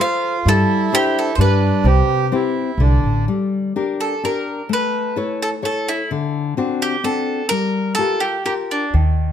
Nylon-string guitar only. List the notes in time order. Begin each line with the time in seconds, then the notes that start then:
0.00 F4 A4 C5
0.46 G3
0.93 D4 G4 C5
1.39 G3
1.85 C3
2.32 C4 E4 G4
2.80 D3
3.28 G3
3.76 D4 G4 A#4
4.23 D4 G4 A#4
4.69 A3
5.16 E4 A4 C#5
5.62 E4 A4 C#5
6.11 D3
6.57 C4 D4 F#4
7.04 C4 D4 F#4
7.51 G3
7.98 F4 G4 A#4
8.45 F4 G4 A#4
8.94 D#3